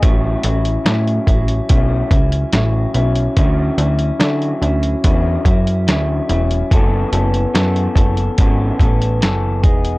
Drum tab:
HH |x-xxxxxxx-xxx-xx|x-xxxxxxx-xxx-xx|x-xxxxxxx-xxx-xx|
SD |----o-------o---|----o-------o---|----o-------o---|
BD |o-----o-o-o-----|o-------o-o-----|o-----o-o-o---o-|